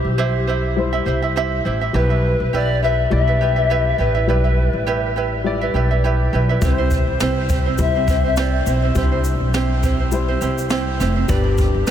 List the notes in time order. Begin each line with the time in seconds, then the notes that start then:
Already playing: G3 E4 G4 C5 E5
0.04 B1
0.18 E4 G4 C5 E5
0.47 E4 G4 C5 E5
0.76 G3 E4 C5
0.93 E4 G4 E5
1.05 C2 E4 G4 C5 E5
1.22 E4 G4 E5
1.36 E4 G4 C5 E5
1.65 A1 E4 G4 C5 E5
1.81 E4 G4 E5
1.93 B1 G3 E4 G4 B4 E5
2.10 E4 B4 E5
2.40 B1
2.53 B1 E4 G4 B4 D5 E5
2.83 E4 G4 B4 E5
3.10 B1 G3 E4 D5 E5
3.27 E4 B4 E5
3.41 E4 G4 B4 E5
3.56 E4 B4 E5
3.70 E4 G4 B4 E5
3.98 A1 E4 G4 B4 E5
4.15 E4 B4 E5
4.27 B1 G3 E4 G4 B4 D5 E5
4.44 E4 B4 E5
4.73 A1
4.87 E4 G4 B4 E5
5.16 E4 G4 B4 E5
5.44 G3 E4 D5
5.61 E4 B4 E5
5.74 B1 E4 G4 B4 E5
5.91 E4 B4 E5
6.04 E4 G4 B4 E5
6.33 B1 E4 G4 B4 E5
6.49 E4 B4 E5
6.61 C2 G3 C4 E4 G4 B4 C5, kick, shaker
6.70 C5
6.78 C4 E4 C5
6.91 kick, shaker
7.07 C2
7.20 C2 C4 E4 G4 C5, snare, shaker
7.49 C4 E4 G4 C5, kick, shaker
7.66 C4 E4 C5
7.78 C2 G3 E4 C5 E5, kick, shaker
7.95 C4 E4 C5
8.08 C4 E4 G4 C5, kick, shaker
8.24 C4 E4 C5 E5
8.37 C4 E4 G4 C5 D5, snare, shaker
8.66 B1 C4 E4 G4 C5, shaker
8.82 C4 E4 C5
8.95 C2 G3 C4 D4 E4 G4 C5, kick, shaker
9.02 E4
9.12 C4 E4 C5
9.24 shaker
9.40 B1
9.54 C4 E4 G4 C5, snare, shaker
9.83 C4 E4 G4 C5, kick, shaker
10.00 C4 E4 C5
10.12 G3 E4 C5, shaker
10.28 C4 E4 C5
10.41 C2 C4 E4 G4 C5, shaker
10.58 shaker
10.70 C4 E4 G4 C5, snare, shaker
11.00 F1 C4 E4 G4 C5, snare, shaker
11.16 C4 E4 C5
11.28 G1 G3 D4 G4 B4 D5, kick, shaker
11.44 D4 G4 D5
11.58 kick, shaker
11.74 G1
11.87 G1 D4 G4 B4, snare, shaker